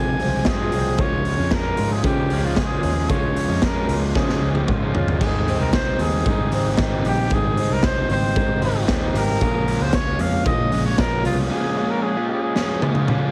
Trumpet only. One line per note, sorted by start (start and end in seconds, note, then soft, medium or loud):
0.00 0.49 G#5 medium
0.48 1.02 G#4 medium
1.00 1.55 C#5 medium
1.53 1.94 A#4 medium
1.92 2.04 G#4 medium
2.05 2.46 G4 medium
2.45 2.59 F4 medium
2.58 3.12 G#4 medium
3.10 3.65 C#5 medium
3.64 4.00 A#4 medium
4.15 4.91 G#4 medium
4.94 5.23 F4 medium
5.21 5.59 G#4 medium
5.60 5.72 A#4 medium
5.74 5.98 C5 medium
6.01 6.75 G#4 medium
7.07 7.35 G4 medium
7.34 7.74 G#4 medium
7.72 7.86 A#4 medium
7.85 8.10 C5 loud
8.11 8.86 C5 medium
9.17 9.84 A#4 loud
9.82 9.96 C5 medium
9.95 10.22 C#5 loud
10.21 10.46 F5 loud
10.46 10.83 D#5 loud
10.86 11.00 C#5 medium
10.99 11.25 A#4 loud
11.26 11.38 F4 medium
11.52 11.92 G#4 medium
11.90 12.04 A#4 medium
12.02 12.28 G#4 medium
12.29 13.04 G#4 medium